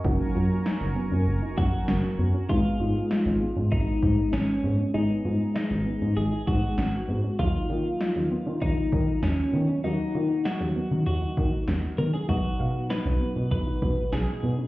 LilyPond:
<<
  \new Staff \with { instrumentName = "Analog synth pad" } { \time 4/4 \key aes \dorian \tempo 4 = 98 <bes' aes'' bes'' des'''>1 | r1 | r1 | r1 |
r1 | r1 | }
  \new Staff \with { instrumentName = "Clean electric guitar" } { \time 4/4 \key aes \dorian r2 r8 ges'4. | f'2 ees'4 des'4 | ees'4 ees'4 aes'8 ges'4. | f'2 ees'4 des'4 |
ees'4 ges'4 ges'4 r8 bes'16 aes'16 | fis'4 b'4 b'4 aes'4 | }
  \new Staff \with { instrumentName = "Synth arpeggio sound" } { \time 4/4 \key aes \dorian ees'8 f'8 ees'16 des'16 ces'16 des'8 ees'16 ees'8 des'8 ces'16 des'16 | ees'8 f'8 ees'16 des'16 ces'16 des'8 ees'16 ees'8 des'8 ces'16 des'16 | ees'8 f'8 ees'16 des'16 ces'16 des'8 ees'16 ees'8 des'8 ces'16 des'16 | ees'8 f'8 ees'16 des'16 ces'16 des'8 ees'16 ees'8 des'8 ces'16 des'16 |
ees'8 f'8 ees'16 des'16 ces'16 des'8 ees'16 ees'8 des'8 ces'16 des'16 | dis'8 f''8 dis'16 des'16 b16 des'8 dis'16 dis'8 des'8 b16 des'16 | }
  \new Staff \with { instrumentName = "Synth keys" } { \time 4/4 \key aes \dorian <ges bes des' ges'>1 | <aes ces' ees' aes'>1 | <aes ces' ees' aes'>1 | <ges bes ees' f'>1 |
<ges bes ees' ges'>1 | <fis b dis' fis'>1 | }
  \new Staff \with { instrumentName = "Analog synth bass" } { \clef bass \time 4/4 \key aes \dorian ges,,16 r16 ges,16 r8 ges,,16 r16 ges,16 ges,,16 r16 ges,16 r16 ges,,16 r16 ges,16 r16 | aes,,16 r16 aes,16 r8 aes,,16 r16 aes,16 aes,,16 r16 aes,16 r16 aes,,16 r16 aes,16 r16 | aes,,16 r16 aes,16 r8 aes,,16 r16 aes,16 aes,,16 r16 aes,16 r16 aes,,16 r16 aes,16 r16 | ees,16 r16 ees16 r8 ees,16 r16 ees16 ees,16 r16 ees16 r16 ees,16 r16 ees16 r16 |
ees,16 r16 ees16 r8 ees,16 r16 ees16 ees,16 r16 ees16 r16 ees,16 r16 ees16 r16 | b,,16 r16 b,16 r8 b,,16 r16 b,16 b,,16 r16 b,16 r16 b,,16 r16 b,16 r16 | }
  \new DrumStaff \with { instrumentName = "Drums" } \drummode { \time 4/4 bd4 sn4 r8 bd8 sn4 | bd4 sn4 bd8 bd8 sn4 | r4 sn4 r8 bd8 sn4 | bd4 sn4 bd8 bd8 sn4 |
r4 sn4 r8 bd8 sn4 | bd4 sn4 bd8 bd8 sn4 | }
>>